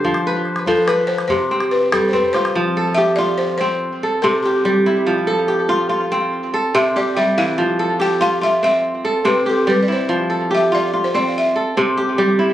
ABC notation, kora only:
X:1
M:12/8
L:1/8
Q:3/8=96
K:Flyd
V:1 name="Kora"
[Gc] B3 B3 C3 C F- | F A G3 z2 A C G G E- | E A G2 F3 A C G G E,- | E, A G2 F3 A C G G E- |
E A G2 F3 A C G G E |]
V:2 name="Kora" clef=bass
F,2 z F,2 z C,2 z G,2 z | F,2 z F2 C z2 C,2 G,2 | F,2 z F2 C z2 C,2 G,2 | F,2 z F2 C z2 C,2 G,2 |
F,2 z F2 C z2 C,2 G,2 |]